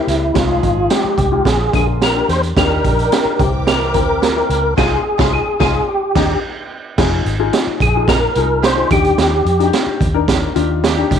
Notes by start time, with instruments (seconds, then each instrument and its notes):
Already playing: upright piano A#3 C4 G4, tonewheel organ E4
0.07 fingered electric bass C#2, snare, closed hi-hat
0.34 fingered electric bass C2, horn section F3 D#4 G#4, upright piano G#3 D#4 F4, tonewheel organ F4, kick, snare, closed hi-hat
0.63 fingered electric bass G#1, kick, closed hi-hat
0.90 upright piano G#3 D#4 G4, tonewheel organ G4, snare, closed hi-hat
1.04 muted fingered electric bass stroke
1.17 fingered electric bass C2, kick, closed hi-hat
1.32 upright piano G#3 D#4 F4
1.45 fingered electric bass A#1, horn section D3 A#3 F4, tonewheel organ G#4, kick, snare, closed hi-hat
1.73 fingered electric bass A#1, upright piano A#3 D4 G#4, tonewheel organ G#4, kick, closed hi-hat
2.02 tonewheel organ A#4, snare, closed hi-hat
2.14 upright piano A#3 D4 G4
2.29 fingered electric bass E2, tonewheel organ C5, snare, closed hi-hat
2.43 closed hi-hat
2.56 fingered electric bass D#2, horn section D#3 D4 G4, upright piano D4 D#4 G4, string section D#4 D5 G5, tonewheel organ A#4, kick, snare, closed hi-hat
2.84 fingered electric bass A#1, kick, closed hi-hat
2.99 closed hi-hat
3.12 upright piano D4 D#4 G4, snare, closed hi-hat
3.25 muted fingered electric bass stroke
3.39 fingered electric bass C2, horn section E3 C4 G4, upright piano C4 E4 A#4, tonewheel organ G4, string section A#4 G5 D6, kick, closed hi-hat
3.67 tonewheel organ A#4, snare, closed hi-hat
3.94 fingered electric bass D2, upright piano C4 E4 A#4, kick, closed hi-hat
4.22 snare, closed hi-hat
4.36 upright piano C4 E4 A#4
4.49 fingered electric bass C#2, closed hi-hat
4.76 fingered electric bass C2, horn section C3 G#3 F4, upright piano D#4 F4 G#4, string section G#4 F5 C6, tonewheel organ G#4, kick, snare, crash
5.17 fingered electric bass C2, horn section C3 G#3 F4, upright piano D#4 F4 G#4, string section G#4 F5 C6, kick, snare
5.33 tonewheel organ G#4
5.60 fingered electric bass C2, horn section C3 G#3 F4, upright piano D#4 F4 G#4, string section G#4 F5 C6, tonewheel organ G#4, kick, snare
5.89 tonewheel organ G4
6.15 fingered electric bass D#2, horn section A#2 G3 D#4, upright piano D4 D#4 G4, string section G4 D#5 A#5, kick, snare, crash
6.98 fingered electric bass F1, upright piano D#4 F4 G#4, kick, snare, crash
7.25 fingered electric bass G#1, closed hi-hat
7.39 upright piano D#4 F4 G#4
7.53 snare, closed hi-hat
7.67 muted fingered electric bass stroke
7.80 fingered electric bass A#1, tonewheel organ G#4, kick, closed hi-hat
7.95 upright piano D#4 F4 G#4
8.08 horn section C3 G#3 D#4, tonewheel organ A#4, kick, snare, closed hi-hat
8.35 fingered electric bass C2, horn section C3 G#3 D#4, upright piano D#4 F4 G#4, closed hi-hat
8.63 horn section D#3 D4 G4, tonewheel organ C5, snare, closed hi-hat
8.77 upright piano D#4 F4 G#4
8.90 fingered electric bass D#2, upright piano D4 D#4 F#4, tonewheel organ G4, kick, closed hi-hat
8.97 upright piano G4
9.04 closed hi-hat
9.18 fingered electric bass D#2, snare, closed hi-hat
9.45 fingered electric bass F2, closed hi-hat
9.59 upright piano D4 D#4 F#4, closed hi-hat
9.66 upright piano G4
9.73 snare, closed hi-hat
9.86 muted fingered electric bass stroke
10.01 fingered electric bass D#2, kick, closed hi-hat
10.14 upright piano D4 D#4 A#4
10.28 horn section D#3 D4 G4, kick, snare, closed hi-hat
10.55 fingered electric bass D#2, horn section D#3 D4 G4, upright piano D4 D#4 F4, closed hi-hat
10.84 horn section D#3 D4 G4, snare, closed hi-hat
10.97 upright piano D4 D#4 G4
11.11 fingered electric bass C#2, kick, snare, closed hi-hat